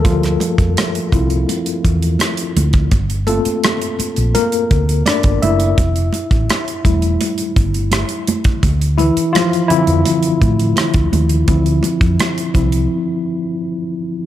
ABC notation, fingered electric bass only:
X:1
M:4/4
L:1/16
Q:1/4=84
K:Dm
V:1 name="Fingered electric bass" clef=bass
D,,2 z F,, z2 C,,2 z2 E,,2 z2 D,,2 | G,,,3 z4 B,,, z2 D,,2 z G,,, ^F,,,2 | F,,,2 z A,,, z2 E,,,2 z2 G,,,3 z3 | D,,3 z4 F,, z2 A,,2 z D,, _E,,2 |
D,,2 z F,, z2 C,,2 z8 |]